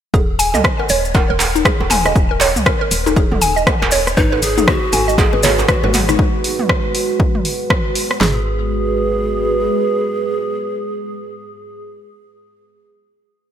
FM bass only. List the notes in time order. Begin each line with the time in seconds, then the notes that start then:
0.14 D#1
0.54 C#2
0.90 D#1
1.30 D#1
1.80 D#1
2.16 D#1
2.56 C#2
2.91 D#1
3.32 D#1
3.82 D#1
4.17 G#1
4.57 F#1
4.93 G#1
5.33 G#1
5.84 G#1
8.21 G#1